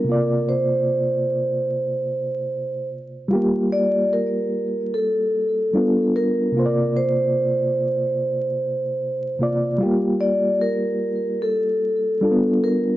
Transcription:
X:1
M:4/4
L:1/8
Q:"Swing 16ths" 1/4=74
K:Gm
V:1 name="Vibraphone"
B c6 z | z d B2 A3 B- | B c6 z | z d B2 A3 B |]
V:2 name="Reed electric piano"
[C,B,Fd]8 | [G,B,FG]6 [G,=B,DF]2 | [C,B,Fcd]6- [C,B,Fcd] [C,B,Fd] | [G,B,FG]6 [G,=B,DFA]2 |]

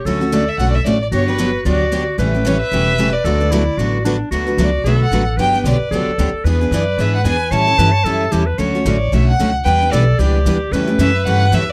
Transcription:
X:1
M:4/4
L:1/16
Q:"Swing" 1/4=225
K:D
V:1 name="Violin"
z4 d2 e2 f3/2 d/2 e2 d2 d2 | c2 B6 d6 z2 | z4 c2 e8 d2- | d12 z4 |
z4 d4 e2 f4 z2 | g4 d8- d2 z2 | z4 d4 e2 f2 ^g4 | a12 z4 |
z4 d4 e2 f4 z2 | g4 d8- d2 z2 | z4 e4 f4 e2 d2 |]
V:2 name="Clarinet"
A12 z4 | F8 F8 | B16 | A4 E4 F4 D4 |
F8 A8 | B8 A8 | B16 | c4 B2 c2 A4 G2 B2 |
c12 z4 | B4 A4 G8 | B16 |]
V:3 name="Steel-string acoustic guitar"
[D,A,CFA]2 z2 [D,A,CFA]2 z2 [D,A,CFA]2 z2 [D,A,CFA]2 z2 | [D,F,B,DG]2 z2 [D,F,B,DG]2 z2 [D,F,B,DG]2 z2 [D,F,B,DG]2 z2 | [E,G,CEA]2 z2 [E,G,CEA]2 z2 [E,G,CEA]2 z2 [E,G,CEA]2 z2 | [D,F,B,FA]2 z2 [D,F,B,FA]2 z2 [D,F,B,FA]2 z2 [D,F,B,FA]2 z2 |
[D,F,B,FA]2 z2 [D,F,B,FA]2 z2 [D,F,B,FA]2 z2 [D,F,B,FA]2 z2 | [D,F,B,DG]2 z2 [D,F,B,DG]2 z2 [D,F,B,DG]2 z2 [D,F,B,DG]2 z2 | [E,B,D^GB]2 z2 [E,B,DGB]2 z2 [E,B,DGB]2 z2 [E,B,DGB]2 z2 | [E,G,CEA]2 z2 [E,G,CEA]2 z2 [E,G,CEA]2 z2 [E,G,CEA]2 z2 |
[D,A,CFA]2 z2 [D,A,CFA]2 z2 [D,A,CFA]2 z2 [D,A,CFA]2 z2 | [E,G,DEB]2 z2 [E,G,DEB]2 z2 [E,G,DEB]2 z2 [E,G,DEB]2 z2 | [E,G,CEA]2 z2 [E,G,CEA]2 z2 [E,G,CEA]2 z2 [E,G,CEA]2 z2 |]
V:4 name="Steel-string acoustic guitar"
[D,F,A,CF]2 [A,CF]2 [D,F,A,CF]2 z2 [D,F,A,CF]2 z2 [D,F,A,CF]2 z2 | [D,F,B,DG]2 [B,DG]2 [D,F,B,DG]2 z2 [D,F,B,DG]2 z2 [D,F,B,DG]2 z2 | [C,E,A,CG]2 [A,CG]2 [C,E,A,CG]2 z2 [C,E,A,CG]2 z2 [C,E,A,CG]2 z2 | [D,F,A,DFB]2 [A,DFB]2 [D,F,A,DFB]2 z2 [D,F,A,DFB]2 z2 [D,F,A,DFB]2 z2 |
[D,F,A,DFB]2 [A,DFB]2 [D,F,A,DFB]2 z2 [D,F,A,DFB]2 z2 [D,F,A,DFB]2 z2 | [D,F,B,DG]2 [B,DG]2 [D,F,B,DG]2 z2 [D,F,B,DG]2 z2 [D,F,B,DG]2 z2 | [E,B,D^G]2 [B,DG]2 [E,B,DG]2 z2 [E,B,DG]2 z2 [E,B,DG]2 z2 | [E,G,CEA]2 [CEA]2 [E,G,CEA]2 z2 [E,G,CEA]2 z2 [E,G,CEA]2 z2 |
[D,F,A,CF]2 [A,CF]2 [D,F,A,CF]2 z2 [D,F,A,CF]2 z2 [D,F,A,CF]2 z2 | [E,B,DG]2 [B,DG]2 [E,B,DG]2 z2 [E,B,DG]2 z2 [E,B,DG]2 z2 | [C,E,A,CG]2 [A,CG]2 [C,E,A,CG]2 z2 [C,E,A,CG]2 z2 [C,E,A,CG]2 z2 |]
V:5 name="Upright bass" clef=bass
D,,8 B,,,4 A,,,4 | G,,,8 D,,8 | A,,,8 E,,,8 | D,,8 A,,,8 |
D,,4 C,,4 B,,,4 A,,,4 | G,,,4 B,,,2 z2 C,,2 z2 D,,2 z2 | E,,4 F,,4 ^G,,4 E,,4 | A,,4 G,,4 F,,4 E,,4 |
D,,4 A,,,4 B,,,4 C,,4 | E,,4 B,,,4 C,,4 D,,4 | E,,4 F,,4 G,,4 E,,4 |]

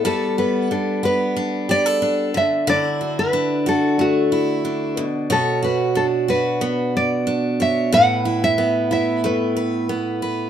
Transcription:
X:1
M:4/4
L:1/16
Q:1/4=91
K:Glyd
V:1 name="Nylon-string guitar"
A2 B2 A2 B4 d4 e2 | d3 B3 A2 F6 z2 | A2 B2 A2 B4 d4 e2 | f3 e3 e2 B6 z2 |]
V:2 name="Steel-string acoustic guitar"
[G,A]2 B,2 D2 B,2 D2 G A D2 D,2 | [D,E]2 F2 D2 F2 A,2 E2 D2 B,,2 | [B,,c]2 F2 D2 F2 B,4 D2 c2 | [A,,B]2 E2 B,2 E2 A,2 B2 B,2 B2 |]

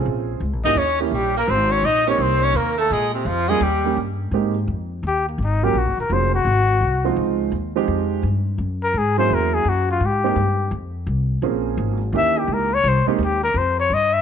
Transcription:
X:1
M:4/4
L:1/8
Q:"Swing" 1/4=169
K:Ab
V:1 name="Trumpet"
z3 e d _F G B | c d e d c d B =A | A C F A G2 z2 | z4 G B, E G |
_G B c G4- G | z8 | z B A c B A _G F | G4 z4 |
z4 _f G B d | c E G B c d e _f |]
V:2 name="Grand piano"
[CDFA]2 z [B,D_FG] z [B,DFG] z2 | z3 [B,CEG]3 z2 | z3 [G,B,DF] z [G,B,DG] z2 | [A,B,CEG] z6 [_G,B,DFB] |
z2 [_G,B,DFA] z4 [F,A,CEF]- | [F,A,CEF]2 z [F,A,CEG]3 z2 | z3 [_G,B,D_FA]3 z2 | z [A,B,CEG] z6 |
[F,B,CDA]3 z [_F,B,DEG]3 z | z [A,B,CEG] z6 |]
V:3 name="Tenor saxophone"
z3 E D _F, G, B, | C D E D C D B, =A, | A, C, F, A, G,2 z2 | z8 |
z8 | z8 | z8 | z8 |
z8 | z8 |]
V:4 name="Upright bass" clef=bass
B,,,2 (3D,, B,,, A,,, E,,2 B,,,2 | A,,,2 B,,,2 C,,2 E,,2 | B,,2 F,,2 E,,2 G,,2 | A,,2 F,,2 E,,2 A,,,2 |
(3B,,, _G,,, E,,, F,,,2 A,,,2 C,,2 | D,,2 E,,2 F,,2 G,,2 | _G,,2 A,,2 _F,,2 G,,2 | A,,2 G,,2 F,,2 C,,2 |
B,,,2 A,,,2 E,,2 D,,2 | C,, z E,,2 F,,2 G,,2 |]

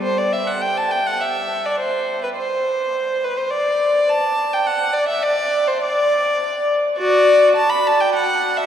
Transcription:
X:1
M:3/4
L:1/16
Q:1/4=104
K:Dmix
V:1 name="Violin"
c d e f g a g f e3 d | c3 B c6 B c | d4 a3 g f2 d e | d3 c d6 z2 |
[Fd]4 a b a g f3 e |]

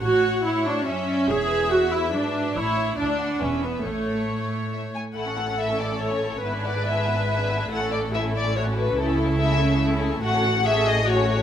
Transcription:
X:1
M:3/4
L:1/16
Q:1/4=142
K:A
V:1 name="Violin section"
f8 e2 d2 | c2 B6 B4 | c2 c2 d2 f2 e4 | c8 e2 g2 |
f4 e2 d2 c4 | B2 d2 e4 e4 | f2 d2 e2 d2 c2 B2 | A4 e4 z4 |
[K:F#dor] f4 e2 d2 c4 |]
V:2 name="Viola section"
F4 E2 D2 C4 | G4 F2 E2 D4 | E4 D4 C2 B,2 | A,8- A,2 z2 |
A12 | B12 | A4 E4 F4 | E12 |
[K:F#dor] F4 G4 F4 |]
V:3 name="Violin section"
c4 c4 e4- | e12 | c4 d4 B4 | c8- c2 z2 |
[A,E] [CA] [A,E] [CA] [A,E] [CA] [A,E] [CA] [A,E] [CA] [A,E] [CA] | [B,E] [DG] [B,E] [DG] [B,E] [DG] [B,E] [DG] [B,E] [DG] [B,E] [DG] | [A,E] [CA] [A,E] [CA] [A,E] [CA] [A,E] [CA] [A,E] [CA] [A,E] [CA] | [A,E] [CA] [A,E] [CA] [A,E] [CA] [A,E] [CA] [A,E] [CA] [A,E] [CA] |
[K:F#dor] [A,F] [CA] [A,F] [CA] [A,F] [CA] [A,F] [CA] [A,F] [CA] [A,F] [CA] |]
V:4 name="Cello section" clef=bass
A,,8 F,,4 | E,,8 G,,4 | A,,4 D,,4 E,,4 | A,,8- A,,2 z2 |
A,,12 | G,,12 | A,,12 | C,12 |
[K:F#dor] A,,12 |]
V:5 name="Double bass section" clef=bass
A,,,4 z8 | E,,,4 z8 | A,,,4 D,,4 E,,,4 | A,,,4 z8 |
A,,,12 | G,,,12 | A,,,12 | C,,12 |
[K:F#dor] A,,,12 |]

